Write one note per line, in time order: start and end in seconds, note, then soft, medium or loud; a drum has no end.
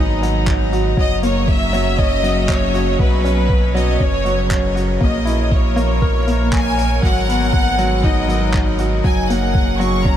0.00 0.95 G#1 loud
0.00 0.22 F#3 loud
0.00 0.98 G#3 medium
0.00 1.00 B3 medium
0.00 0.11 D#4 loud
0.00 1.61 D#4 medium
0.00 0.98 B4 medium
0.00 0.47 D#5 medium
0.00 3.41 A#5 medium
0.22 0.46 F#3 medium
0.22 closed hi-hat medium
0.47 kick loud
0.47 clap medium
0.73 0.87 F#4 medium
0.73 closed hi-hat medium
0.97 2.97 F#1 medium
0.97 1.21 F#3 medium
0.97 5.01 F#3 medium
0.97 1.22 D#5 loud
0.97 kick loud
1.23 1.47 A#3 medium
1.23 1.47 C#5 loud
1.23 closed hi-hat medium
1.28 3.40 G#4 medium
1.43 5.82 C#4 medium
1.48 1.99 E5 loud
1.48 kick loud
1.73 1.97 F#3 loud
1.73 closed hi-hat medium
1.99 2.13 C#4 loud
1.99 2.50 D#5 loud
1.99 kick loud
2.23 2.47 F#3 medium
2.23 closed hi-hat medium
2.49 3.00 C#5 loud
2.49 kick loud
2.49 clap medium
2.74 2.88 F#4 medium
2.74 closed hi-hat medium
2.99 3.98 B1 loud
2.99 4.00 B2 medium
2.99 3.24 F#3 medium
2.99 3.71 B4 loud
2.99 kick loud
3.24 3.49 C#4 medium
3.24 closed hi-hat medium
3.46 4.41 C#5 medium
3.50 kick loud
3.75 3.99 F#3 loud
3.75 4.00 D#5 loud
3.75 closed hi-hat medium
4.00 4.99 F#1 loud
4.00 4.15 C#4 loud
4.00 4.76 C#5 loud
4.00 kick loud
4.25 4.49 F#3 medium
4.25 closed hi-hat medium
4.46 5.82 G#4 medium
4.46 10.17 A#4 medium
4.51 kick loud
4.51 clap medium
4.75 4.90 F#4 medium
4.75 closed hi-hat medium
5.00 7.00 A#1 loud
5.00 5.25 A#3 medium
5.00 7.03 A#3 medium
5.00 5.48 D#5 loud
5.00 kick loud
5.25 5.50 E4 medium
5.25 closed hi-hat medium
5.32 7.03 F3 medium
5.51 6.52 C#5 loud
5.51 kick loud
5.76 6.00 A#3 loud
5.76 closed hi-hat medium
5.92 7.84 C#5 medium
6.02 6.16 A#4 loud
6.02 kick loud
6.27 6.51 A#3 medium
6.27 closed hi-hat medium
6.53 6.99 G#5 loud
6.53 kick loud
6.53 clap medium
6.78 6.92 C#5 medium
6.78 closed hi-hat medium
7.02 9.02 G#1 medium
7.02 7.26 F#3 medium
7.02 9.05 G#3 medium
7.02 8.04 F#5 loud
7.02 kick loud
7.28 7.52 B3 medium
7.28 closed hi-hat medium
7.33 9.85 D#4 medium
7.33 9.04 B4 medium
7.53 kick loud
7.78 8.02 F#3 loud
7.78 closed hi-hat medium
8.04 8.18 D#4 loud
8.04 8.80 D#5 loud
8.04 kick loud
8.28 8.53 F#3 medium
8.28 closed hi-hat medium
8.54 kick loud
8.54 clap medium
8.78 8.94 F#4 medium
8.78 closed hi-hat medium
9.04 10.17 F#1 medium
9.04 9.28 F#3 medium
9.04 10.17 F#3 medium
9.04 9.28 G#5 loud
9.04 kick loud
9.20 10.17 G#4 medium
9.30 9.54 A#3 medium
9.30 9.80 F#5 loud
9.30 closed hi-hat medium
9.55 kick loud
9.59 10.17 C#4 medium
9.79 10.04 F#3 loud
9.79 10.05 C#6 loud
9.79 closed hi-hat medium
10.05 10.17 C#4 loud
10.05 10.17 A#5 loud
10.05 kick loud